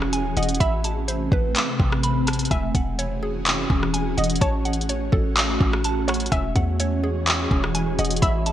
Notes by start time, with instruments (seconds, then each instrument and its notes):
Already playing: 808-style bass E1, ambient pad E3 C#4 F#4 G#4, synth pluck C#4 G#4 C#5 E5 F#5 G#5
0.02 cross-stick
0.13 synth pluck G#5, closed hi-hat
0.25 808-style bass D#1
0.37 808-style bass E1, synth pluck D#5 F#5, closed hi-hat
0.43 closed hi-hat
0.49 closed hi-hat
0.55 closed hi-hat
0.60 808-style bass A1, ambient pad C3 A3 C4, synth pluck E5 B5, kick, closed hi-hat
0.84 synth pluck A5, closed hi-hat
1.08 synth pluck C5, closed hi-hat
1.32 808-style bass A1, synth pluck B4, kick
1.56 clap, closed hi-hat
1.79 808-style bass A1, synth pluck C4, kick
1.92 cross-stick
2.03 synth pluck B5, closed hi-hat
2.27 synth pluck A5, cross-stick, closed hi-hat
2.33 closed hi-hat
2.39 closed hi-hat
2.45 closed hi-hat
2.51 808-style bass E1, ambient pad E3 C#4 F#4 G#4, synth pluck E5 G#5, kick, closed hi-hat
2.75 808-style bass E1, synth pluck F#5, kick, closed hi-hat
2.99 synth pluck C#5, closed hi-hat
3.23 synth pluck G#4
3.46 clap, closed hi-hat
3.70 808-style bass E1, synth pluck C#4, kick
3.83 cross-stick
3.94 synth pluck G#5, closed hi-hat
4.17 808-style bass E1, synth pluck D#5 F#5, closed hi-hat
4.24 closed hi-hat
4.30 closed hi-hat
4.36 closed hi-hat
4.41 808-style bass A1, ambient pad A3 F#4, synth pluck C#5 A5, kick, closed hi-hat
4.65 synth pluck F#5, closed hi-hat
4.73 closed hi-hat
4.81 closed hi-hat
4.89 synth pluck C#5, closed hi-hat
5.12 808-style bass A1, synth pluck A4, kick
5.37 clap, closed hi-hat
5.60 808-style bass A1, synth pluck C#4, kick
5.73 cross-stick
5.84 synth pluck A5, closed hi-hat
6.08 synth pluck C#5 F#5, cross-stick, closed hi-hat
6.14 closed hi-hat
6.20 closed hi-hat
6.26 closed hi-hat
6.32 808-style bass E1, ambient pad E3 F#4 G#4, synth texture G#3 F#4 C#5, synth pluck E5 G#5, kick, closed hi-hat
6.56 808-style bass E2, synth pluck F#5, kick, closed hi-hat
6.80 synth pluck C#5, closed hi-hat
7.04 synth pluck G#4
7.27 clap, closed hi-hat
7.51 808-style bass E1, synth pluck C#4, kick
7.64 cross-stick
7.75 synth pluck G#5, closed hi-hat
7.87 808-style bass D#1
7.99 808-style bass E1, synth pluck D#5 F#5, closed hi-hat
8.05 closed hi-hat
8.11 closed hi-hat
8.16 closed hi-hat
8.22 808-style bass A1, synth texture A3 C4 B4, synth pluck E5 B5, kick, closed hi-hat
8.46 synth pluck A5, closed hi-hat